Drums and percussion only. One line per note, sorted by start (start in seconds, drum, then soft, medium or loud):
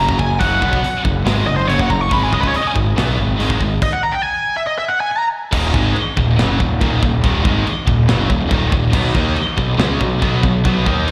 0.09 kick medium
0.19 kick medium
0.41 kick loud
0.41 open hi-hat medium
0.62 kick medium
0.73 kick medium
0.84 open hi-hat medium
1.05 kick medium
1.27 snare loud
1.27 open hi-hat medium
1.70 open hi-hat medium
1.79 kick medium
1.90 kick medium
2.11 kick loud
2.11 open hi-hat medium
2.33 kick medium
2.43 kick medium
2.54 open hi-hat medium
2.76 kick medium
2.98 snare loud
2.98 open hi-hat medium
3.40 open hi-hat medium
3.50 kick medium
3.61 kick medium
3.82 kick loud
3.82 crash medium
5.52 kick loud
5.52 crash loud
5.52 china medium
5.74 kick loud
5.96 china medium
6.17 kick loud
6.39 snare loud
6.39 china medium
6.60 kick medium
6.81 kick loud
6.81 china medium
7.03 kick medium
7.24 kick loud
7.24 china medium
7.45 kick loud
7.67 china medium
7.87 kick loud
8.09 snare loud
8.09 china medium
8.30 kick medium
8.51 kick loud
8.51 china medium
8.72 kick loud
8.93 kick loud
8.93 china medium
8.93 crash loud
9.15 kick loud
9.36 china medium
9.58 kick medium
9.79 snare loud
9.79 china medium
10.01 kick medium
10.22 kick loud
10.22 china medium
10.43 kick medium
10.65 kick loud
10.65 china medium
10.86 kick loud
11.08 china medium